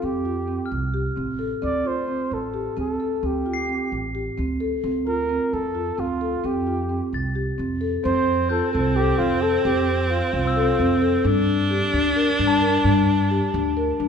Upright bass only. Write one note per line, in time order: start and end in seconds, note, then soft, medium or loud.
0.03 0.57 F2 medium
0.72 1.08 C2 medium
1.17 1.53 A1 medium
1.63 2.17 D2 medium
2.31 2.68 A1 medium
2.77 3.14 D2 medium
3.23 3.77 D2 medium
3.92 4.28 A1 medium
4.38 4.74 D2 medium
4.84 5.38 D2 medium
5.53 5.89 F2 medium
5.98 6.35 D2 medium
6.44 6.98 F2 medium
7.13 7.49 C2 medium
7.59 7.95 F2 medium
8.05 8.59 F2 medium
8.75 9.10 C2 medium
9.20 9.56 F2 medium
9.65 10.19 F2 medium
10.33 10.70 C2 medium
10.79 11.16 F2 medium
11.24 11.79 G2 medium
11.93 12.30 D2 medium
12.39 12.76 G2 medium
12.84 13.39 G2 medium
13.54 13.90 D2 medium
14.00 14.08 G2 medium